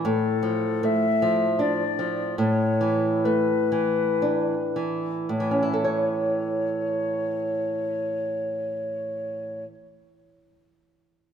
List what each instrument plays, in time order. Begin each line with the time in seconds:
0.05 nylon-string guitar A2, flute A4
0.43 nylon-string guitar F3
0.83 nylon-string guitar A3, flute E5
1.22 nylon-string guitar F3
1.59 nylon-string guitar D4, flute D5
1.99 nylon-string guitar F3
2.38 nylon-string guitar A2, flute C#5
2.81 nylon-string guitar E3
3.24 nylon-string guitar A3, flute B4
3.72 nylon-string guitar E3
4.22 nylon-string guitar D4
4.76 nylon-string guitar E3
5.29 nylon-string guitar A2, flute C#5
5.40 nylon-string guitar E3
5.51 nylon-string guitar C#4
5.63 nylon-string guitar E4
5.73 nylon-string guitar A4
5.84 nylon-string guitar C#5